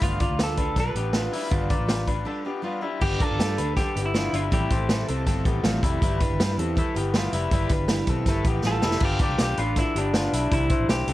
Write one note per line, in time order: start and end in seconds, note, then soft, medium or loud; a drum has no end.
0.00 0.26 G1 loud
0.00 0.20 G3 medium
0.00 0.21 B3 medium
0.00 0.20 D4 medium
0.00 0.20 F4 medium
0.00 0.21 F4 medium
0.00 0.18 B4 medium
0.00 kick loud
0.00 closed hi-hat medium
0.19 0.38 D4 soft
0.19 0.39 F4 soft
0.19 0.56 F4 medium
0.19 0.41 F4 medium
0.19 0.39 B4 soft
0.19 0.56 D5 medium
0.19 kick loud
0.19 closed hi-hat medium
0.30 0.75 D2 medium
0.39 0.58 G3 medium
0.39 0.58 D4 medium
0.39 0.57 F4 medium
0.39 0.57 B4 medium
0.39 snare loud
0.39 closed hi-hat medium
0.43 0.79 A4 medium
0.57 0.77 D4 medium
0.57 0.76 D4 soft
0.57 0.76 F4 soft
0.57 0.77 B4 medium
0.57 kick medium
0.57 closed hi-hat medium
0.76 0.92 B1 medium
0.76 0.96 G3 medium
0.76 0.96 D4 medium
0.76 0.95 F4 medium
0.76 0.96 A4 medium
0.76 0.94 B4 medium
0.76 2.62 B4 loud
0.76 kick medium
0.76 snare soft
0.76 closed hi-hat medium
0.95 1.27 A1 medium
0.95 1.14 B3 medium
0.95 1.14 D4 soft
0.95 1.14 F4 soft
0.95 1.14 G4 medium
0.95 1.14 B4 soft
0.95 closed hi-hat medium
1.13 1.33 G3 medium
1.13 1.34 B3 medium
1.13 1.33 D4 medium
1.13 1.33 F4 medium
1.13 1.32 F4 medium
1.13 1.31 B4 medium
1.13 snare loud
1.13 closed hi-hat medium
1.32 1.50 G3 medium
1.32 1.50 D4 soft
1.32 1.52 E4 medium
1.32 1.50 F4 medium
1.32 1.51 B4 medium
1.32 open hi-hat medium
1.50 1.75 G1 medium
1.50 1.70 G3 medium
1.50 1.71 B3 medium
1.50 1.70 D4 medium
1.50 1.69 F4 loud
1.50 1.69 F4 medium
1.50 1.68 B4 medium
1.50 kick loud
1.50 closed hi-hat medium
1.69 1.87 D4 soft
1.69 1.87 F4 medium
1.69 2.06 F4 medium
1.69 1.88 B4 medium
1.69 2.06 D5 medium
1.69 kick loud
1.69 closed hi-hat medium
1.79 2.24 A1 medium
1.87 2.07 G3 medium
1.87 2.07 D4 medium
1.87 2.06 F4 medium
1.87 2.05 B4 medium
1.87 snare loud
1.87 closed hi-hat medium
2.06 2.27 D4 medium
2.06 2.24 D4 soft
2.06 2.25 F4 medium
2.06 2.25 B4 medium
2.06 2.26 B4 medium
2.06 kick medium
2.06 closed hi-hat medium
2.25 2.45 G3 medium
2.25 2.45 D4 medium
2.25 2.46 D4 medium
2.25 2.44 F4 medium
2.25 2.46 A4 medium
2.25 2.44 B4 medium
2.45 2.64 B3 medium
2.45 2.62 D4 soft
2.45 2.62 F4 soft
2.45 2.64 G4 medium
2.45 2.63 B4 medium
2.62 2.82 G3 medium
2.62 2.84 B3 medium
2.62 2.83 D4 medium
2.62 2.81 F4 medium
2.62 2.83 F4 medium
2.62 2.80 B4 medium
2.81 3.01 G3 medium
2.81 2.99 D4 soft
2.81 3.02 E4 medium
2.81 3.01 F4 medium
2.81 3.01 B4 medium
3.01 3.26 G1 loud
3.01 3.20 G3 medium
3.01 3.21 B3 medium
3.01 3.20 D4 medium
3.01 4.49 D4 medium
3.01 3.20 G4 medium
3.01 4.49 G4 medium
3.01 3.21 G4 loud
3.01 3.19 B4 medium
3.01 4.49 B4 medium
3.01 kick loud
3.01 crash loud
3.20 3.38 D4 soft
3.20 3.56 F4 medium
3.20 3.39 G4 soft
3.20 3.76 A4 medium
3.20 3.39 B4 soft
3.20 3.56 D5 medium
3.20 kick loud
3.20 closed hi-hat medium
3.31 3.38 G1 medium
3.39 3.56 G2 medium
3.39 3.58 G3 medium
3.39 3.58 D4 medium
3.39 3.59 G4 medium
3.39 3.57 B4 medium
3.39 snare loud
3.39 closed hi-hat medium
3.58 3.82 D2 medium
3.58 3.76 D4 medium
3.58 3.78 D4 soft
3.58 3.78 G4 soft
3.58 3.77 B4 medium
3.58 closed hi-hat medium
3.77 3.96 G3 medium
3.77 3.96 D4 medium
3.77 3.97 D4 medium
3.77 4.05 G4 loud
3.77 3.96 G4 medium
3.77 3.96 A4 medium
3.77 3.95 B4 medium
3.77 kick medium
3.77 snare soft
3.77 closed hi-hat medium
3.96 4.28 G1 medium
3.96 4.14 B3 medium
3.96 4.14 D4 soft
3.96 4.14 G4 medium
3.96 4.15 B4 medium
3.96 closed hi-hat medium
4.06 4.34 E4 medium
4.14 4.33 G3 medium
4.14 4.34 B3 medium
4.14 4.34 D4 medium
4.14 4.33 F4 medium
4.14 4.33 G4 medium
4.14 4.32 B4 medium
4.14 snare loud
4.14 closed hi-hat medium
4.33 4.49 G1 medium
4.33 4.52 G3 medium
4.33 4.52 D4 medium
4.33 4.51 E4 medium
4.33 4.40 F4 medium
4.33 4.52 G4 medium
4.33 4.52 B4 medium
4.33 closed hi-hat medium
4.51 4.68 A1 medium
4.51 4.70 A2 medium
4.51 4.71 E3 medium
4.51 4.71 G3 medium
4.51 5.98 C4 medium
4.51 4.71 C4 medium
4.51 4.71 E4 loud
4.51 4.70 E4 medium
4.51 5.99 G4 medium
4.51 4.88 G4 medium
4.51 5.99 A4 medium
4.51 4.69 A4 medium
4.51 kick loud
4.51 closed hi-hat medium
4.70 5.03 A1 medium
4.70 4.90 G3 soft
4.70 4.90 C4 soft
4.70 4.90 E4 soft
4.70 5.07 E4 medium
4.70 4.89 A4 medium
4.70 5.06 C5 medium
4.70 kick loud
4.70 closed hi-hat medium
4.89 5.09 A2 medium
4.89 5.09 E3 medium
4.89 5.09 G3 medium
4.89 5.08 C4 medium
4.89 5.07 E4 medium
4.89 5.07 A4 medium
4.89 snare loud
4.89 closed hi-hat loud
5.07 5.25 C2 medium
5.07 5.25 G3 soft
5.07 5.27 C4 medium
5.07 5.26 C4 medium
5.07 5.26 E4 medium
5.07 5.27 A4 medium
5.07 5.26 A4 medium
5.07 5.17 C6 medium
5.07 closed hi-hat medium
5.18 5.26 A5 medium
5.26 5.43 G1 medium
5.26 5.45 G3 medium
5.26 5.46 C4 medium
5.26 5.45 E4 medium
5.26 5.46 A4 medium
5.26 5.44 A4 medium
5.26 5.53 G5 medium
5.26 kick medium
5.26 snare soft
5.26 closed hi-hat medium
5.45 5.61 A1 medium
5.45 5.63 G3 soft
5.45 5.65 B3 medium
5.45 5.64 C4 medium
5.45 5.64 E4 medium
5.45 5.64 G4 medium
5.45 5.64 A4 medium
5.45 kick loud
5.45 closed hi-hat medium
5.56 5.64 G5 medium
5.63 5.80 A1 loud
5.63 5.83 A2 medium
5.63 5.83 E3 medium
5.63 5.83 G3 loud
5.63 5.84 A3 medium
5.63 5.83 C4 medium
5.63 5.82 E4 medium
5.63 5.83 F4 medium
5.63 5.82 A4 loud
5.63 5.82 E5 medium
5.63 snare medium
5.63 closed hi-hat medium
5.83 5.99 F1 medium
5.83 6.02 G3 medium
5.83 6.01 G3 medium
5.83 6.02 C4 medium
5.83 6.02 E4 medium
5.83 6.01 E4 medium
5.83 6.02 A4 medium
5.83 6.01 D5 medium
5.83 kick loud
5.83 closed hi-hat medium
6.00 6.26 G1 loud
6.00 6.21 G3 medium
6.00 8.97 E4 medium
6.00 6.21 E4 medium
6.00 6.21 E4 loud
6.00 8.97 G4 medium
6.00 6.21 G4 medium
6.00 8.97 B4 medium
6.00 6.20 B4 medium
6.00 kick loud
6.00 closed hi-hat medium
6.21 6.57 D4 medium
6.21 6.39 E4 medium
6.21 6.40 G4 medium
6.21 6.56 B4 medium
6.21 6.40 B4 medium
6.21 kick loud
6.21 closed hi-hat medium
6.30 6.38 G1 medium
6.40 6.56 G2 loud
6.40 6.59 G3 medium
6.40 6.58 E4 medium
6.40 6.58 G4 medium
6.40 6.56 B4 medium
6.40 snare loud
6.40 closed hi-hat loud
6.58 6.82 E2 medium
6.58 6.78 C4 medium
6.58 6.75 E4 soft
6.58 6.76 G4 medium
6.58 6.77 A4 medium
6.58 6.76 B4 medium
6.58 closed hi-hat medium
6.75 6.95 G3 medium
6.75 6.95 E4 medium
6.75 6.96 E4 medium
6.75 6.95 G4 medium
6.75 6.96 A4 medium
6.75 6.93 B4 medium
6.75 kick loud
6.75 closed hi-hat medium
6.95 7.27 G1 medium
6.95 7.15 B3 medium
6.95 7.14 E4 soft
6.95 7.14 G4 medium
6.95 7.15 G4 medium
6.95 7.14 B4 medium
6.95 closed hi-hat medium
7.14 7.33 G3 medium
7.14 7.34 B3 medium
7.14 7.33 E4 loud
7.14 7.33 F4 medium
7.14 7.33 G4 loud
7.14 7.32 B4 loud
7.14 snare loud
7.14 closed hi-hat medium
7.32 7.49 F1 loud
7.32 7.52 G3 medium
7.32 7.51 E4 loud
7.32 7.52 E4 medium
7.32 7.52 G4 medium
7.32 7.52 B4 medium
7.32 closed hi-hat medium
7.51 7.67 G1 loud
7.51 7.71 G3 medium
7.51 7.71 E4 loud
7.51 7.71 E4 medium
7.51 7.70 G4 loud
7.51 7.69 B4 medium
7.51 kick loud
7.51 closed hi-hat medium
7.69 8.02 G1 loud
7.69 8.07 D4 medium
7.69 7.88 E4 medium
7.69 7.90 G4 medium
7.69 7.89 B4 medium
7.69 8.06 B4 medium
7.69 kick loud
7.69 closed hi-hat medium
7.88 8.08 G3 medium
7.88 8.08 E4 medium
7.88 8.09 G4 loud
7.88 8.07 B4 loud
7.88 snare loud
7.88 closed hi-hat medium
8.07 8.23 B1 loud
8.07 8.28 C4 medium
8.07 8.27 E4 soft
8.07 8.27 G4 medium
8.07 8.27 A4 medium
8.07 8.27 B4 medium
8.07 kick medium
8.07 closed hi-hat medium
8.26 8.42 G1 medium
8.26 8.46 G3 medium
8.26 8.46 E4 medium
8.26 8.46 G4 medium
8.26 8.46 A4 medium
8.26 8.45 B4 medium
8.26 kick medium
8.26 snare soft
8.26 closed hi-hat medium
8.45 8.61 A1 medium
8.45 8.65 B3 medium
8.45 8.64 E4 medium
8.45 8.65 G4 medium
8.45 8.64 G4 medium
8.45 8.65 B4 medium
8.45 kick loud
8.45 closed hi-hat medium
8.63 8.80 A1 medium
8.63 8.83 G3 medium
8.63 8.84 B3 medium
8.63 8.83 E4 medium
8.63 8.84 F4 medium
8.63 8.82 G4 loud
8.63 9.04 A4 loud
8.63 8.81 B4 medium
8.63 snare medium
8.82 8.99 F1 medium
8.82 9.02 G3 medium
8.82 9.02 E4 loud
8.82 9.02 E4 medium
8.82 9.02 G4 medium
8.82 9.01 B4 medium
8.82 snare loud
8.91 snare medium
9.00 9.25 G1 loud
9.00 9.21 B3 medium
9.00 10.48 D4 medium
9.00 10.48 F4 medium
9.00 9.21 F4 loud
9.00 10.48 G4 medium
9.00 10.48 B4 medium
9.00 kick loud
9.00 crash loud
9.05 9.22 G4 loud
9.19 9.56 F4 medium
9.19 9.56 D5 medium
9.19 kick loud
9.19 closed hi-hat medium
9.23 9.41 G4 medium
9.29 9.37 C2 medium
9.38 9.55 B1 medium
9.38 snare loud
9.38 closed hi-hat loud
9.43 9.58 G4 loud
9.57 9.82 A1 loud
9.57 9.77 D4 medium
9.57 9.78 F4 loud
9.57 9.77 B4 medium
9.57 closed hi-hat medium
9.76 9.96 D4 medium
9.76 9.97 E4 loud
9.76 9.95 A4 medium
9.76 kick medium
9.76 snare soft
9.76 closed hi-hat medium
9.95 10.27 G1 loud
9.95 10.14 B3 medium
9.95 10.54 D4 medium
9.95 10.14 G4 medium
9.95 closed hi-hat medium
10.14 10.33 B3 medium
10.14 10.33 F4 medium
10.14 snare loud
10.14 closed hi-hat medium
10.33 10.49 B1 medium
10.33 10.52 G3 medium
10.33 10.51 E4 medium
10.33 closed hi-hat loud
10.50 10.75 C2 loud
10.50 10.71 G3 medium
10.50 11.13 D4 medium
10.50 11.13 E4 medium
10.50 10.70 E4 loud
10.50 10.90 E4 loud
10.50 11.13 G4 medium
10.50 11.13 C5 medium
10.50 kick loud
10.50 closed hi-hat medium
10.69 11.06 E4 medium
10.69 11.06 C5 medium
10.69 kick loud
10.69 closed hi-hat medium
10.79 10.87 A1 medium
10.88 11.04 B1 medium
10.88 11.13 G4 loud
10.88 snare loud
10.88 closed hi-hat loud
11.07 11.13 C2 loud
11.07 11.13 C4 medium
11.07 11.13 A4 medium
11.07 closed hi-hat medium